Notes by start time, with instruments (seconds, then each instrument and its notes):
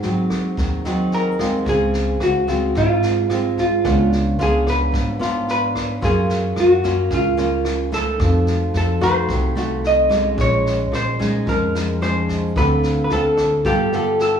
Already playing: nylon-string guitar G#2, vibraphone D#4 G#4 C5 F#5, hollow-body jazz guitar F#4
0.02 upright bass G#1, nylon-string guitar F#3 C4 D#4, snare
0.30 kick, cross-stick, snare
0.57 upright bass D#2, nylon-string guitar D#3, kick, snare
0.84 nylon-string guitar F#3 C4 D#4, vibraphone D#5, snare
1.11 hollow-body jazz guitar A#4, vibraphone G#5, snare
1.39 nylon-string guitar G#3 C4 F4, vibraphone C6, kick, cross-stick, snare
1.64 upright bass C#2, nylon-string guitar C#3, vibraphone G#4 C5, kick, snare
1.69 hollow-body jazz guitar G#4, vibraphone F5
1.94 snare
2.20 upright bass C#2, hollow-body jazz guitar F#4, cross-stick, snare
2.48 nylon-string guitar G#3 C4 F4, kick, snare
2.75 upright bass G#1, nylon-string guitar G#2, hollow-body jazz guitar F4, kick, snare
3.02 snare
3.30 nylon-string guitar G#3 C4 F4, cross-stick, snare
3.57 hollow-body jazz guitar F4, kick, snare
3.81 nylon-string guitar C#3, vibraphone D4 B4 C#5, cross-stick, snare
3.85 upright bass C#2, nylon-string guitar B3 D4 F4, vibraphone F5, kick
4.12 snare
4.39 upright bass C#2, nylon-string guitar B3 D4 F4, hollow-body jazz guitar G#4, snare
4.67 hollow-body jazz guitar B4, kick, cross-stick, snare
4.92 upright bass G#1, nylon-string guitar G#2, kick, snare
5.19 nylon-string guitar B3 D4 F4, snare
5.48 hollow-body jazz guitar B4, snare
5.75 kick, cross-stick, snare
5.99 upright bass F#2, nylon-string guitar F#3 A#3 C#4 F4, vibraphone C#4 A#4, kick, snare
6.05 hollow-body jazz guitar G#4, vibraphone F5
6.29 snare
6.56 upright bass F#2, hollow-body jazz guitar F#4, cross-stick, snare
6.84 nylon-string guitar A#3 C#4 F4, kick, snare
7.10 upright bass C#2, nylon-string guitar C#3, kick, snare
7.14 hollow-body jazz guitar F4
7.37 nylon-string guitar A#3 C#4 F4, snare
7.65 cross-stick, snare
7.92 nylon-string guitar A3 D#4, hollow-body jazz guitar A4, kick, snare
8.16 upright bass F2, nylon-string guitar F3, vibraphone D#4 F#4, kick, cross-stick, snare
8.21 vibraphone A4 F5
8.47 snare
8.74 upright bass F2, hollow-body jazz guitar A4, snare
9.01 nylon-string guitar A3 D#4 F#4, hollow-body jazz guitar C5, kick, cross-stick, snare
9.29 upright bass C2, nylon-string guitar C3, kick, snare
9.55 nylon-string guitar A3 D#4 F#4, snare
9.84 hollow-body jazz guitar D#5, snare
10.09 nylon-string guitar G#3 C#4 D#4, kick, cross-stick, snare
10.33 vibraphone C#4 G#4 C6
10.37 upright bass A#1, nylon-string guitar A#2, hollow-body jazz guitar C#5, vibraphone D#5, kick, snare
10.66 snare
10.92 upright bass A#1, hollow-body jazz guitar C5, cross-stick, snare
11.19 nylon-string guitar G#3 C#4 D#4, kick, snare
11.46 upright bass F2, nylon-string guitar F3, hollow-body jazz guitar A#4, kick, snare
11.75 snare
12.02 nylon-string guitar G#3 C#4 D#4, hollow-body jazz guitar C5, cross-stick, snare
12.28 vibraphone C#4 G#4 C5 D#5, kick, snare
12.54 upright bass D2, nylon-string guitar D3 C4 F4, vibraphone D4 A4, hollow-body jazz guitar B4, kick, cross-stick, snare
12.58 vibraphone C4 F5, nylon-string guitar A4
12.83 snare
13.04 hollow-body jazz guitar B4
13.10 upright bass D2, nylon-string guitar C4 F4 A4, hollow-body jazz guitar A4, snare
13.37 kick, cross-stick, snare
13.62 upright bass G1, nylon-string guitar G3 B3, vibraphone F4 A4 B4, hollow-body jazz guitar G4, kick, snare
13.66 nylon-string guitar F4 A4, vibraphone G5
13.92 nylon-string guitar B3 F4 A4, snare
14.19 hollow-body jazz guitar A4, snare